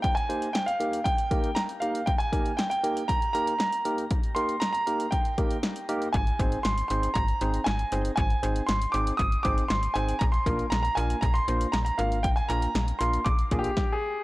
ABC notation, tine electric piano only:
X:1
M:4/4
L:1/8
Q:1/4=118
K:Eb
V:1 name="Tine electric piano"
z [B,EGc] z [B,EGB] z [B,EGB] z [B,EGB] | z [B,EGB] z [B,EGB] z [B,EGB] z [B,EGB] | z [B,EGB] z [B,EGB] z [B,EGB] z [B,EGB] | z [CEAc] z [CEAc] z [CEAc] z [CEAc] |
z [CEAc] z [CEAc] z [CEAc] z [CEAc] | z [B,DFB] z [B,DFB] z [B,DFc] z [B,DFB] | z [B,DFB] z [B,DFB] z [B,DFA] z2 |]